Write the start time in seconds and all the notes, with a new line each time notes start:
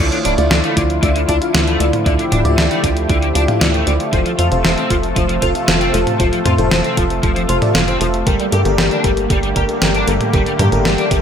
0.00 D2 D3 F3 A3 E4 F4 D5
0.12 D3, closed hi-hat
0.25 D1 D4 E4 F4 D5, closed hi-hat
0.38 D2 E4 F4 D5, closed hi-hat
0.51 D2 D3 E4 F4 D5, snare, closed hi-hat
0.64 A3, closed hi-hat
0.77 D2 D3 E4 F4 D5, kick, closed hi-hat
0.90 closed hi-hat
1.03 D2 D3 E4 F4 D5, kick, closed hi-hat
1.15 D3, closed hi-hat
1.28 D2 D4 E4 F4 D5, kick, closed hi-hat
1.42 E4 F4 F5, closed hi-hat
1.54 D2 D3 E4 F4 D5, snare, closed hi-hat
1.67 A3, closed hi-hat
1.80 D2 D3 E4 F4 D5, closed hi-hat
1.93 closed hi-hat, mid tom
2.06 D2 D3 E4 F4 G4 D5, kick, closed hi-hat
2.19 D3, closed hi-hat
2.32 D1 D4 E4 F4 D5, closed hi-hat, mid tom
2.45 D2 E4 F4 D5, closed hi-hat
2.58 D2 D3 E4 F4 D5, snare, closed hi-hat
2.71 A3, closed hi-hat
2.84 D2 D3 E4 F4 D5, kick, closed hi-hat
2.97 closed hi-hat
3.09 D2 D3 E4 F4 D5, kick, closed hi-hat
3.22 D3, closed hi-hat
3.35 D2 D4 E4 F4 D5, closed hi-hat
3.48 E4 F4 F5, closed hi-hat, mid tom
3.61 D2 D3 E4 F4 D5, snare, closed hi-hat
3.74 A3, closed hi-hat
3.87 D2 D3 E4 F4 D5, closed hi-hat
4.00 closed hi-hat
4.13 F1 C3 F3 F4 A4 C5, kick, closed hi-hat
4.26 F3, closed hi-hat
4.39 F2 F4 A4 C5, closed hi-hat
4.52 F1 F4 A4 C5, closed hi-hat
4.64 F1 F3 F4 A4 C5, snare, closed hi-hat
4.77 C4, closed hi-hat
4.90 F1 F3 F4 A4 C5, kick, closed hi-hat
5.03 closed hi-hat
5.16 F1 F3 F4 A4 C5, kick, closed hi-hat
5.29 F3, closed hi-hat
5.42 F1 F4 A4 C5, kick, closed hi-hat
5.55 F4 A4 F5, closed hi-hat
5.68 F1 F3 F4 A4 C5, snare, closed hi-hat
5.81 C4, closed hi-hat
5.94 F1 F3 F4 A4 C5, closed hi-hat
6.07 closed hi-hat, mid tom
6.20 F1 F3 F4 A4 C5, kick, closed hi-hat
6.33 F3, closed hi-hat
6.46 F2 F4 A4 C5, closed hi-hat, mid tom
6.58 F1 F4 A4 C5, closed hi-hat
6.71 F1 F3 F4 A4 C5, snare, closed hi-hat
6.84 C4, closed hi-hat
6.97 F1 F3 F4 A4 C5, kick, closed hi-hat
7.10 closed hi-hat
7.23 F1 F3 F4 A4 C5, kick, closed hi-hat
7.36 F3, closed hi-hat
7.49 F1 F4 A4 C5, closed hi-hat
7.62 F4 A4 D5, closed hi-hat, mid tom
7.75 F1 F3 F4 A4 F5, snare, closed hi-hat
7.88 C4, closed hi-hat
8.01 F1 F3 F4 A4 C5, closed hi-hat
8.14 closed hi-hat
8.26 G1 D3 G3 A#3 G4 A4 A#4, kick, closed hi-hat
8.39 G3, closed hi-hat
8.52 G2 G4 A4 A#4, closed hi-hat
8.65 G1 G4 A4 A#4, closed hi-hat
8.78 G1 G3 G4 A4 A#4, snare, closed hi-hat
8.91 D4, closed hi-hat
9.04 G1 G3 G4 A4 A#4, kick, closed hi-hat
9.17 closed hi-hat
9.30 G1 G3 G4 A4 A#4, kick, closed hi-hat
9.43 G3, closed hi-hat
9.56 G1 G4 A4 A#4, kick, closed hi-hat
9.69 G4 A4 A#4, closed hi-hat
9.82 G1 G3 G4 A4 A#4, snare, closed hi-hat
9.95 D4, closed hi-hat
10.08 G1 G3 G4 A4 A#4, closed hi-hat
10.21 closed hi-hat, mid tom
10.33 G1 G3 G4 A4 A#4, kick, closed hi-hat
10.46 G3, closed hi-hat
10.59 G2 G4 A4 A#4, closed hi-hat, mid tom
10.72 G1 G4 A4 A#4, closed hi-hat
10.85 G1 G3 G4 A4 A#4, snare, closed hi-hat
10.98 D4, closed hi-hat
11.11 G1 G3 G4 A4 A#4, kick, closed hi-hat